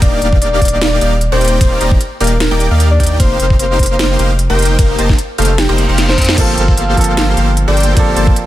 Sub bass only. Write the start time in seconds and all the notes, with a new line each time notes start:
0.02 D#1
0.22 D#1
0.62 D#1
1.01 D#1
1.32 D#1
1.61 D#1
1.81 D#1
2.20 D#1
2.51 D#1
2.71 D#2
3.00 D#2
3.20 F1
3.40 F1
3.79 F1
4.19 F1
4.50 F1
4.79 F1
4.99 F1
5.38 F1
5.69 F1
5.89 F1
6.18 F2
6.38 G1
6.57 G1
6.97 G1
7.37 G1
7.68 G1
7.97 G1
8.16 G1